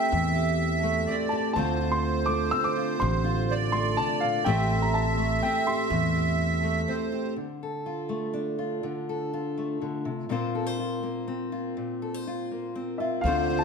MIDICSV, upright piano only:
0, 0, Header, 1, 2, 480
1, 0, Start_track
1, 0, Key_signature, -1, "minor"
1, 0, Tempo, 483871
1, 117, Time_signature, 3, 2, 24, 8
1, 6837, Tempo, 488202
1, 13474, End_track
2, 0, Start_track
2, 0, Title_t, "Upright piano"
2, 0, Program_c, 0, 0
2, 0, Note_on_c, 0, 79, 83
2, 541, Note_off_c, 0, 79, 0
2, 1280, Note_on_c, 0, 81, 73
2, 1506, Note_off_c, 0, 81, 0
2, 1521, Note_on_c, 0, 81, 84
2, 1899, Note_on_c, 0, 84, 86
2, 1908, Note_off_c, 0, 81, 0
2, 2240, Note_on_c, 0, 86, 93
2, 2277, Note_off_c, 0, 84, 0
2, 2492, Note_on_c, 0, 88, 97
2, 2504, Note_off_c, 0, 86, 0
2, 2621, Note_on_c, 0, 86, 99
2, 2626, Note_off_c, 0, 88, 0
2, 2973, Note_on_c, 0, 84, 91
2, 2997, Note_off_c, 0, 86, 0
2, 3678, Note_off_c, 0, 84, 0
2, 3693, Note_on_c, 0, 84, 88
2, 3939, Note_on_c, 0, 81, 94
2, 3949, Note_off_c, 0, 84, 0
2, 4170, Note_on_c, 0, 77, 80
2, 4192, Note_off_c, 0, 81, 0
2, 4409, Note_on_c, 0, 79, 91
2, 4428, Note_off_c, 0, 77, 0
2, 4782, Note_on_c, 0, 82, 82
2, 4791, Note_off_c, 0, 79, 0
2, 4900, Note_on_c, 0, 81, 83
2, 4910, Note_off_c, 0, 82, 0
2, 5382, Note_on_c, 0, 79, 84
2, 5400, Note_off_c, 0, 81, 0
2, 5624, Note_on_c, 0, 84, 77
2, 5634, Note_off_c, 0, 79, 0
2, 7030, Note_off_c, 0, 84, 0
2, 12823, Note_on_c, 0, 76, 54
2, 13051, Note_off_c, 0, 76, 0
2, 13051, Note_on_c, 0, 77, 81
2, 13397, Note_off_c, 0, 77, 0
2, 13420, Note_on_c, 0, 81, 84
2, 13474, Note_off_c, 0, 81, 0
2, 13474, End_track
0, 0, End_of_file